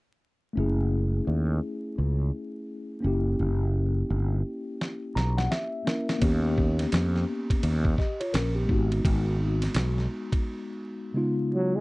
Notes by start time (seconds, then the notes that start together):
0.53 F#1 A3 C#4
0.58 E4 G#4
1.27 D#2
1.98 C#2
3.01 F#1 A#3 C#4
3.05 E4 G4
3.40 F#1
4.10 G1
4.81 snare
5.15 B1 A#5, snare
5.38 F#5, snare
5.51 E5, snare
5.85 A#3 C#4 E4 A#4, snare
6.09 snare
6.19 D#2 A#3 B3, kick, ride
6.23 C#4 G4
6.58 kick
6.79 snare, ride
6.92 F2, snare, hi-hat pedal, ride
7.16 snare
7.50 kick, ride
7.63 D#2, ride
7.85 kick
7.98 G4 D#5, kick, snare
8.20 F4 C#5, ride
8.33 A#1 C#4 A#4, snare, hi-hat pedal, ride
8.55 B3 G4
8.66 G#1 G#3 B3, kick
8.70 D#4 F#4
8.92 ride
9.04 G#1, kick, ride
9.62 snare, ride
9.74 B1, snare, hi-hat pedal, ride
9.98 snare
10.32 kick, ride
11.14 C#3 G#3 B3 D#4 F4
11.54 F#3
11.76 G#3